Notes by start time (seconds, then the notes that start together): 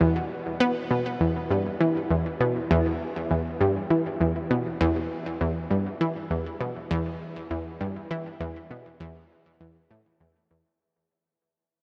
0.01 E2
0.60 B3
0.91 B2
1.21 E2
1.51 G2
1.81 E3
2.11 E2
2.40 B2
2.71 E2
3.31 E2
3.61 G2
3.90 E3
4.21 E2
4.51 B2
4.81 E2
5.41 E2
5.71 G2
6.01 E3
6.31 E2
6.61 B2
6.91 E2
7.51 E2
7.81 G2
8.11 E3
8.40 E2
8.71 B2
9.00 E2
9.61 E2
9.91 A2
10.20 E2
10.51 E2